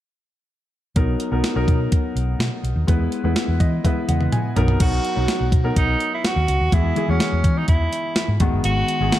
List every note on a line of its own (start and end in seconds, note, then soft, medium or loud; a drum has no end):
0.96 1.14 B1 medium
0.96 1.24 F#3 medium
0.96 1.24 B3 medium
0.96 1.25 D#4 medium
0.96 1.25 A#4 medium
0.96 kick loud
0.96 closed hi-hat medium
1.20 closed hi-hat medium
1.31 1.41 B1 medium
1.31 1.50 F#3 medium
1.31 1.51 B3 medium
1.31 1.51 D#4 medium
1.31 1.51 A#4 medium
1.44 snare medium
1.44 closed hi-hat medium
1.55 1.65 B1 medium
1.55 2.31 F#3 medium
1.55 2.31 B3 medium
1.55 2.31 D#4 medium
1.55 2.31 A#4 medium
1.68 1.86 B2 medium
1.68 kick medium
1.68 closed hi-hat medium
1.92 kick medium
1.92 closed hi-hat medium
2.15 2.34 B1 medium
2.15 closed hi-hat medium
2.39 2.49 B2 medium
2.39 snare medium
2.39 closed hi-hat medium
2.63 2.73 B1 medium
2.63 closed hi-hat medium
2.76 2.85 D#2 medium
2.87 3.06 E2 loud
2.87 3.16 G#3 medium
2.87 3.16 B3 medium
2.87 3.17 E4 medium
2.87 3.17 B4 medium
2.87 kick medium
2.87 closed hi-hat medium
3.12 closed hi-hat medium
3.24 3.33 E2 medium
3.24 3.71 G#3 medium
3.24 3.71 B3 medium
3.24 3.71 E4 medium
3.24 3.71 B4 medium
3.36 snare loud
3.36 closed hi-hat medium
3.48 3.57 E2 medium
3.60 3.78 E3 medium
3.60 3.83 D#5 medium
3.60 kick medium
3.60 closed hi-hat medium
3.84 4.56 G#3 medium
3.84 4.54 B3 medium
3.84 4.57 E4 medium
3.84 4.57 B4 medium
3.84 4.07 E5 medium
3.84 kick medium
3.84 closed hi-hat medium
3.84 high tom soft
4.08 4.27 E2 medium
4.08 4.31 F#5 medium
4.08 closed hi-hat medium
4.08 mid tom medium
4.21 mid tom medium
4.32 4.55 G#5 medium
4.32 closed hi-hat medium
4.32 mid tom medium
4.56 4.75 B1 medium
4.56 4.75 F#3 medium
4.56 4.75 B3 medium
4.56 4.76 D#4 medium
4.56 4.76 A#4 medium
4.56 4.79 A#5 medium
4.56 closed hi-hat medium
4.56 floor tom medium
4.68 floor tom medium
4.79 4.98 B1 loud
4.79 5.08 F#3 medium
4.79 5.08 D#4 medium
4.79 5.49 F#4 loud
4.79 kick loud
4.79 closed hi-hat medium
4.79 crash medium
5.04 closed hi-hat medium
5.15 5.26 B1 medium
5.15 5.53 F#3 medium
5.15 5.53 B3 medium
5.15 5.54 D#4 medium
5.15 5.54 F#4 medium
5.28 snare medium
5.28 closed hi-hat medium
5.40 5.49 B1 medium
5.52 5.70 B2 medium
5.52 kick medium
5.52 closed hi-hat medium
5.64 6.39 F#3 medium
5.64 6.39 B3 medium
5.64 6.39 D#4 medium
5.64 6.39 A#4 medium
5.76 5.94 B1 medium
5.76 6.11 D#4 medium
5.76 kick medium
5.76 closed hi-hat medium
6.00 closed hi-hat medium
6.14 6.27 E4 medium
6.25 6.75 F#4 loud
6.25 snare loud
6.25 closed hi-hat medium
6.36 6.45 D#2 medium
6.48 6.57 C#2 medium
6.48 closed hi-hat medium
6.60 6.69 D#2 medium
6.72 6.91 E2 loud
6.72 6.91 E3 medium
6.72 6.91 G#3 medium
6.72 6.91 B3 medium
6.72 7.12 E4 medium
6.72 6.92 G#4 medium
6.72 kick loud
6.72 closed hi-hat medium
6.96 7.05 E3 medium
6.96 7.06 G#3 medium
6.96 7.06 B3 medium
6.96 7.06 G#4 medium
6.96 closed hi-hat medium
7.08 7.17 E2 medium
7.08 7.83 E3 medium
7.08 7.83 G#3 medium
7.08 7.84 B3 medium
7.08 7.59 C#4 medium
7.08 7.84 F#4 medium
7.20 snare loud
7.20 closed hi-hat medium
7.32 7.42 E2 medium
7.44 7.62 E3 medium
7.44 kick medium
7.44 closed hi-hat medium
7.58 7.68 D#4 medium
7.68 7.86 E2 medium
7.68 8.36 E4 medium
7.68 kick medium
7.68 closed hi-hat medium
7.93 closed hi-hat medium
8.16 snare loud
8.16 closed hi-hat medium
8.28 8.37 G#2 medium
8.40 8.49 G#1 medium
8.40 8.88 D#3 medium
8.40 8.89 G#3 medium
8.40 8.89 B3 medium
8.40 8.89 F#4 medium
8.40 kick loud
8.40 closed hi-hat medium
8.52 8.62 F#1 medium
8.64 8.82 G#1 loud
8.64 9.19 F#4 loud
8.64 closed hi-hat medium
8.88 closed hi-hat medium
9.00 9.09 G#1 medium
9.00 9.19 D#3 medium
9.00 9.19 G#3 medium
9.00 9.19 B3 medium
9.00 9.19 G#4 medium
9.12 snare loud
9.12 closed hi-hat medium